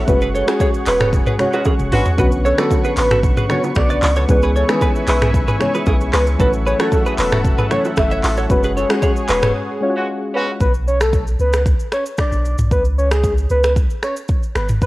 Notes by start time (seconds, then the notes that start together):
Already playing: E4 F#5
0.07 F#1 G#3 C#4 F#4 G#4 B4 C#5 C#6, kick, low conga, shaker
0.21 G#4 B4, shaker
0.35 A4 C#5, shaker
0.47 G#3 C#4 F#4 G#4, finger snap, cross-stick, low bongo, shaker
0.60 G#4 C#5, kick, high bongo, shaker
0.74 shaker
0.86 E1 G#4 B4, clap, open hi-hat, shaker
1.00 A4 C#5, finger snap, cross-stick, mid tom, shaker
1.13 kick, low conga, shaker
1.26 G#4 B4, mid tom, shaker
1.38 G#3 C#4 F#4 C#5, finger snap, cross-stick, low conga, shaker
1.53 G#3 C#4 F#4 G#4 B4, low bongo, shaker
1.65 C#4 G#4, kick, high tom, high bongo, shaker
1.79 E1, mid tom, shaker
1.92 A1 G#3 C#4 D4 F#4 B4, mid tom, open hi-hat, low bongo, shaker
2.05 floor tom, shaker
2.17 B1 D3 F#3 B3 C#4 F#4 B4, kick, low conga, shaker
2.32 shaker
2.45 A4 C#5, shaker
2.57 D3 F#3 B3 C#4 F#4 A4 B4 D5, finger snap, cross-stick, low bongo, shaker
2.71 kick, high bongo, shaker
2.85 G#4 B4, shaker
2.97 A1 B4, clap, open hi-hat, shaker
3.11 F#4 A4, finger snap, cross-stick, mid tom, shaker
3.23 kick, low conga, shaker
3.37 G#4 B4, mid tom, shaker
3.49 C#3 D3 F#3 B3 F#4 A4 C#5, finger snap, cross-stick, low conga, shaker
3.63 low bongo, shaker
3.75 B1 D5, finger snap, kick, cross-stick, high bongo, shaker
3.90 B4 D5, shaker
4.02 C#2, clap, open hi-hat, low bongo, shaker
4.16 A4 C#5, shaker
4.28 C#2 E3 G#3 B3 C#4 G#4 B4 E5 G#5, kick, low conga, shaker
4.42 G#4 B4, shaker
4.56 A4 C#5, shaker
4.68 D#3 G#3 B3 C#4 G#4 B4, finger snap, cross-stick, low bongo, shaker
4.74 E3
4.81 G#4 B4, kick, high bongo, shaker
4.95 shaker
5.07 B1 E4 G#4 B4, clap, open hi-hat, shaker
5.21 E4 G#4, finger snap, cross-stick, mid tom, shaker
5.34 kick, low conga, shaker
5.48 G#4 B4, mid tom, shaker
5.59 E3 G#3 B3 C#4 G#4 C#5, finger snap, cross-stick, low conga, shaker
5.74 G#4 B4, low bongo, shaker
5.86 B1 E4 G#4, kick, high bongo, shaker
6.01 shaker
6.13 C#2 G#4 B4, finger snap, cross-stick, clap, open hi-hat, low bongo, shaker
6.27 shaker
6.38 A1 E3 F#3 A3 C#4 F#4 A4 B4 E5 F#5, kick, low conga, shaker
6.53 shaker
6.66 G#4 B4 C#5, shaker
6.78 E3 F#3 A3 C#4 F#4 A4 C#5, finger snap, cross-stick, low bongo, shaker
6.92 kick, high bongo, shaker
7.06 G#4 B4, shaker
7.18 E1 B4, clap, open hi-hat, shaker
7.32 F#4 A4, finger snap, cross-stick, mid tom, shaker
7.45 kick, low conga, shaker
7.58 G#4 B4, mid tom, shaker
7.70 E3 F#3 A3 C#4 F#4 A4 C#5, finger snap, cross-stick, low conga, shaker
7.85 low bongo, shaker
7.96 F#1 E5, finger snap, kick, cross-stick, high bongo, shaker
8.11 C#5 E5, shaker
8.24 A1, clap, open hi-hat, low bongo, shaker
8.37 A4 C#5, shaker
8.49 F#1 G#3 C#4 F#4 G#4 B4 C#5, kick, low conga, shaker
8.63 G#4 B4, shaker
8.77 A4 C#5, low bongo, shaker
8.89 G#3 C#4 F#4 G#4, finger snap, cross-stick, low bongo, shaker
9.02 G#4 C#5, kick, high bongo, shaker
9.16 shaker
9.28 E1 G#4 B4, clap, open hi-hat, shaker
9.42 A4 C#5, finger snap, cross-stick, mid tom, shaker
9.81 G#3 C#4 F4 C#5
9.89 F#4
9.95 G#3 C#4 F#4
10.34 G#3 C#4 F#4 B4
10.61 B1 B4, kick, shaker
10.74 shaker
10.87 C#5, shaker
11.01 A4, finger snap, cross-stick, shaker
11.13 kick, shaker
11.27 shaker
11.39 C#2 B4, shaker
11.53 finger snap, cross-stick, shaker
11.66 kick, shaker
11.80 shaker
11.92 C#5, finger snap, cross-stick, shaker
12.06 shaker
12.18 D5, finger snap, kick, cross-stick, shaker
12.32 B1, shaker
12.45 shaker
12.58 B1, mid tom, shaker
12.71 C#2 B4, kick, shaker
12.85 shaker
12.98 C#5, shaker
13.11 G#4, finger snap, cross-stick, shaker
13.24 kick, shaker
13.38 shaker
13.50 C#2 B4, shaker
13.64 finger snap, cross-stick, shaker
13.76 kick, shaker
13.90 shaker
14.03 C#5, finger snap, cross-stick, shaker
14.16 shaker
14.28 kick, shaker
14.43 shaker
14.55 G#1 B4, finger snap, cross-stick, shaker
14.69 mid tom, shaker
14.82 A1 B4, kick, shaker